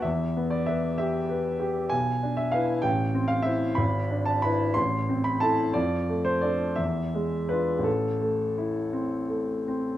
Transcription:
\new Staff \with { instrumentName = "Grand piano" } { \time 6/8 \key c \lydian \tempo 4. = 61 << { e''8. d''16 e''8 e''4. | \key a \minor gis''8. e''16 f''8 g''8. f''16 e''8 | b''8. a''16 b''8 c'''8. b''16 a''8 | d''8. c''16 d''8 e''4 b'8 |
a'4. r4. | } \\ { e,8 b8 b'8 g'8 b'8 g'8 | b,,8 d'8 <e' b'>8 a,,8 c'8 <e' c''>8 | gis,,8 d'8 <e' b'>8 a,,8 c'8 <e' a'>8 | f,8 a8 <d' a'>8 e,8 gis8 <d' f'>8 |
a,,8 a8 e'8 c'8 a8 c'8 | } >> }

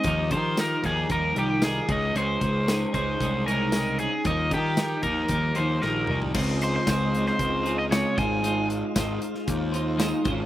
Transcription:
<<
  \new Staff \with { instrumentName = "Overdriven electric guitar" } { \time 4/4 \key aes \major \tempo 4 = 114 ees''8 c''8 bes'8 aes'8 bes'8 g'8 aes'8 ees''8 | c''4. c''4 bes'4 aes'8 | ees''8 g'4 bes'4 c''8 bes'8. r16 | r8 c''16 c''16 c''8. c''4 ees''16 des''8 aes''8~ |
aes''8 r2. r8 | }
  \new Staff \with { instrumentName = "Clean electric guitar" } { \time 4/4 \key aes \major <ees f g ees' bes'>8 <g ees' bes'>8 <f g ees' bes'>8 <ees f g ees' bes'>8 <f g ees' bes'>8 <ees f g ees' bes'>8 <f g ees' bes'>8 <des aes des' ees' aes'>8 | <des aes des' ees' aes'>8 <des' ees' aes'>8 <aes des' ees' aes'>8 <des aes des' ees' aes'>8 <aes des' ees' aes'>8 <des aes des' ees' aes'>8 <aes des' ees' aes'>8 <des' ees' aes'>8 | <ees f g ees' bes'>8 <g ees' bes'>8 <f g ees' bes'>8 <ees f g ees' bes'>8 <f g ees' bes'>8 <ees f g ees' bes'>8 <f g ees' bes'>8 <g ees' bes'>8 | <des aes c' f' aes'>4 <aes c' f' aes'>4. <c' f' aes'>8 <des aes c' f' aes'>8 <aes ees' f' c''>8 |
<aes ees' f' c''>4 <aes ees' f' c''>4. <ees' f' c''>8 <aes ees' f' c''>8 <aes des' f' c''>8 | }
  \new Staff \with { instrumentName = "Tonewheel organ" } { \time 4/4 \key aes \major << { r1 | r1 | r1 | <aes f'>1~ |
<aes f'>2.~ <aes f'>8 f'8 | } \\ { r1 | r1 | r1 | <des ees'>2.~ <des ees'>8 r8 |
r2. r8 des'8 | } >> }
  \new Staff \with { instrumentName = "Picked electric bass" } { \clef bass \time 4/4 \key aes \major ees,8 ees4 ees,8 ees,8 c,4 des,8 | des,8 des,4 des,8 c,2 | ees,8 ees4 ees,8 ees,8 ees,8 bes,,8 c,8 | des,4 des,4 des,4. aes,,8~ |
aes,,4 aes,,8 r8 ees,4. aes,,8 | }
  \new DrumStaff \with { instrumentName = "Drums" } \drummode { \time 4/4 <hh bd>8 <hh bd>8 <hh sn tamb>8 <hh bd>8 <hh bd>8 hh8 <hh sn tamb>8 <hh bd>8 | hh8 <hh bd>8 <hh sn tamb>8 <hh bd>8 <hh bd>8 hh8 <hh sn tamb>8 hh8 | <hh bd>8 <hh bd>8 <hh sn tamb>8 <hh bd>8 <hh bd>8 hh8 sn8 toml16 tomfh16 | <cymc bd>8 hh8 <hh bd sn tamb>8 hh16 sn16 <hh bd>8 hh8 <hh sn tamb>8 <hh bd>8 |
hh8 hh8 <hh bd sn tamb>8 hh16 sn16 <hh bd>8 hh8 <hh sn tamb>8 <hh bd>8 | }
>>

